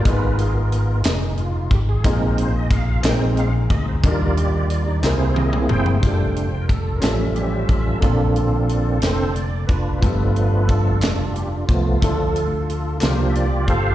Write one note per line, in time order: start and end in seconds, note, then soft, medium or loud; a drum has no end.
0.02 1.01 G#1 medium
0.02 0.10 A#3 soft
0.02 2.00 D#4 medium
0.02 1.01 A#4 medium
0.02 kick medium
0.02 closed hi-hat medium
0.06 1.02 G#2 medium
0.06 1.01 B3 soft
0.06 2.02 B3 medium
0.06 2.02 F4 medium
0.06 1.02 F4 medium
0.06 2.03 G#4 medium
0.06 0.38 B4 medium
0.39 0.55 G#4 medium
0.39 closed hi-hat soft
0.72 closed hi-hat soft
1.04 1.68 F1 medium
1.04 1.40 D#4 medium
1.04 snare loud
1.04 clap medium
1.04 closed hi-hat medium
1.38 1.73 F4 medium
1.38 closed hi-hat soft
1.71 2.02 G#1 medium
1.71 1.80 G4 medium
1.71 kick medium
1.71 closed hi-hat soft
1.89 2.04 G#4 medium
2.04 3.00 A#1 medium
2.04 3.01 A#2 medium
2.04 2.49 G#3 medium
2.04 3.04 A#3 medium
2.04 2.49 C4 medium
2.04 3.02 D#4 soft
2.04 2.49 D#4 medium
2.04 3.05 F4 medium
2.04 3.04 G#4 medium
2.04 2.40 A#4 medium
2.04 kick medium
2.04 closed hi-hat medium
2.38 2.55 C5 medium
2.38 closed hi-hat medium
2.56 2.72 D#5 medium
2.71 3.03 F5 medium
2.71 kick medium
2.71 closed hi-hat soft
3.03 3.66 A#1 medium
3.03 4.00 A#2 medium
3.03 3.49 G#3 soft
3.03 4.03 C4 medium
3.03 3.50 C4 soft
3.03 4.03 D#4 medium
3.03 4.04 G#4 medium
3.03 4.05 A#4 medium
3.03 snare loud
3.03 clap medium
3.03 closed hi-hat medium
3.07 3.50 D#4 medium
3.07 3.22 G5 loud
3.37 3.53 F5 loud
3.37 closed hi-hat soft
3.70 4.01 D2 medium
3.70 3.86 D#5 loud
3.70 kick medium
3.70 closed hi-hat soft
3.88 3.96 C5 medium
4.04 4.99 D#2 medium
4.04 5.00 D#3 medium
4.04 5.00 G3 medium
4.04 5.03 D4 medium
4.04 5.04 D#4 medium
4.04 4.71 F4 medium
4.04 5.04 G4 medium
4.04 4.36 A#4 medium
4.04 5.04 A#4 medium
4.04 5.00 D5 soft
4.04 kick loud
4.04 closed hi-hat medium
4.37 4.72 G4 medium
4.37 closed hi-hat medium
4.70 4.87 F4 medium
4.70 closed hi-hat medium
4.88 5.18 D#4 medium
5.03 5.66 C2 medium
5.03 5.99 C3 medium
5.03 6.00 A#3 soft
5.03 6.03 C4 medium
5.03 6.03 E4 medium
5.03 6.01 E4 medium
5.03 6.04 G#4 medium
5.03 6.01 G#4 medium
5.03 6.04 A#4 medium
5.03 5.39 C5 medium
5.03 snare medium
5.03 clap medium
5.07 6.01 C4 medium
5.36 5.52 D#5 medium
5.36 high tom medium
5.53 mid tom medium
5.69 6.00 F#1 medium
5.69 6.58 C5 loud
5.69 6.66 G5 medium
5.69 mid tom medium
5.86 floor tom medium
6.02 6.99 F1 medium
6.02 6.47 G3 soft
6.02 6.47 A3 soft
6.02 7.02 D4 soft
6.02 6.48 D4 medium
6.02 7.00 F4 soft
6.02 7.01 G4 soft
6.02 6.11 G#4 soft
6.02 kick medium
6.02 closed hi-hat medium
6.12 7.02 A4 medium
6.36 closed hi-hat soft
6.62 6.69 A#4 medium
6.68 6.96 A4 medium
6.68 kick medium
6.68 closed hi-hat soft
6.96 8.01 C#4 medium
6.96 7.03 A#4 medium
7.01 7.65 A1 medium
7.01 7.98 A2 medium
7.01 7.98 F3 soft
7.01 7.98 G3 soft
7.01 7.99 C#4 soft
7.01 8.02 F4 soft
7.01 8.02 G4 soft
7.01 7.16 A4 medium
7.01 8.03 A4 medium
7.01 7.99 E5 medium
7.01 snare medium
7.01 clap medium
7.01 closed hi-hat medium
7.36 7.70 G4 medium
7.36 closed hi-hat soft
7.66 8.00 A1 medium
7.66 8.02 F4 medium
7.66 kick medium
7.66 closed hi-hat soft
7.99 8.98 A#1 medium
7.99 8.98 A#2 medium
7.99 8.98 D3 soft
7.99 9.96 A#3 medium
7.99 8.98 A#3 soft
7.99 9.97 D4 soft
7.99 8.98 F4 medium
7.99 9.01 A4 medium
7.99 kick medium
7.99 closed hi-hat medium
8.03 8.99 C4 medium
8.03 8.99 D4 medium
8.03 9.98 F4 medium
8.03 10.00 A4 medium
8.36 closed hi-hat soft
8.69 closed hi-hat soft
9.00 9.65 F1 medium
9.00 9.32 D3 soft
9.00 9.33 C4 soft
9.00 9.32 A4 soft
9.00 9.36 C5 medium
9.00 snare medium
9.00 clap medium
9.00 closed hi-hat medium
9.33 9.65 D5 medium
9.33 closed hi-hat soft
9.67 10.00 F1 medium
9.67 10.64 D4 medium
9.67 10.65 F4 medium
9.67 10.71 B4 medium
9.67 kick medium
9.67 closed hi-hat soft
9.99 10.98 G2 medium
9.99 10.98 F3 soft
9.99 10.98 A3 soft
9.99 11.96 B3 medium
9.99 11.97 F4 medium
9.99 kick medium
10.03 11.03 G1 medium
10.03 10.98 B3 soft
10.03 11.99 G4 medium
10.03 12.00 A4 medium
10.03 closed hi-hat medium
10.36 closed hi-hat soft
10.68 11.65 D4 medium
10.68 11.65 F4 medium
10.68 11.31 A4 medium
10.68 kick medium
10.68 closed hi-hat soft
11.02 11.65 F1 medium
11.02 snare loud
11.02 clap medium
11.02 closed hi-hat medium
11.34 11.49 G4 medium
11.34 closed hi-hat soft
11.67 11.99 C2 medium
11.67 11.98 F3 soft
11.67 11.98 A3 soft
11.67 11.99 B3 medium
11.67 12.02 F4 medium
11.67 kick medium
11.67 closed hi-hat soft
12.00 12.98 D2 medium
12.00 12.98 D3 medium
12.00 12.46 F3 soft
12.00 13.01 A3 soft
12.00 12.47 A3 soft
12.00 13.02 D4 soft
12.00 12.47 D4 medium
12.00 12.09 E4 soft
12.00 12.98 F4 medium
12.00 12.97 A4 medium
12.00 13.03 A4 medium
12.00 kick medium
12.00 closed hi-hat medium
12.09 13.01 F4 soft
12.36 closed hi-hat soft
12.70 closed hi-hat soft
13.00 13.70 C2 medium
13.00 13.95 C3 medium
13.00 13.46 F3 soft
13.00 13.95 A#3 medium
13.00 13.46 A#3 soft
13.00 13.95 C4 soft
13.00 13.46 D4 medium
13.00 13.95 F4 soft
13.00 13.95 F4 medium
13.00 13.95 G4 medium
13.00 13.28 C5 medium
13.00 snare medium
13.00 clap medium
13.00 closed hi-hat medium
13.30 13.68 D5 medium
13.30 13.36 E5 medium
13.35 closed hi-hat soft
13.68 13.95 G1 medium
13.68 13.95 A4 medium
13.68 13.95 C5 medium
13.68 13.95 F5 loud
13.68 kick medium
13.68 closed hi-hat soft